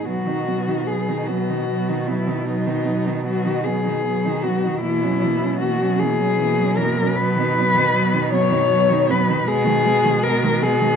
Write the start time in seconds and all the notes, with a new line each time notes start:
0.05 B2 F#3 B3 F#4
0.27 D#3 D#4
0.47 F#3 B3
0.68 D#3 D#4
0.87 F#3 B3 G#4
1.09 D#3 D#4
1.26 F#3 B3 F#4
1.49 D#3 D#4
1.70 F#3 B3
1.89 D#3 D#4
2.07 F#3 B3 E4
2.27 D#3 D#4
2.45 F#3 B3 D#4
2.66 D#3 D#4
2.84 F#3 B3
3.06 D#3 D#4
3.23 F#3 B3 F#4
3.45 D#3 D#4
3.64 F#3 B3 G#4
3.84 D#3 D#4
4.03 F#3 B3
4.25 D#3 D#4
4.42 B3 F#4
4.46 F#3
4.64 D#3 D#4
4.81 B2 E3 A#3 E4
5.04 F#3 C#4
5.23 E3 A#3
5.41 F#3 C#4
5.59 E3 A#3 F#4
5.80 F#3 C#4
5.99 E3 A#3 G#4
6.19 F#3 C#4
6.39 E3 A#3
6.57 F#3
6.62 C#4
6.76 E3 A#4
6.82 A#3
6.96 F#3
7.03 C#4
7.16 F#3 B3 B4
7.36 D#3
7.40 D#4
7.55 F#3
7.61 B3
7.74 D#3
7.79 D#4
7.93 F#3 B3
8.12 D#3 D#4
8.30 F#3 B3 C#5
8.50 D#3 D#4
8.70 F#3 B3
8.90 D#3 D#4
9.10 F#3 B3 B4
9.29 D#3 D#4
9.46 B2 G#3 B3 G#4
9.66 D#3 G#3
9.85 G#3 B3
10.04 D#3 G#3
10.23 G#3 B3 A#4
10.43 D#3 G#3
10.62 G#3 B3 G#4
10.81 D#3 G#3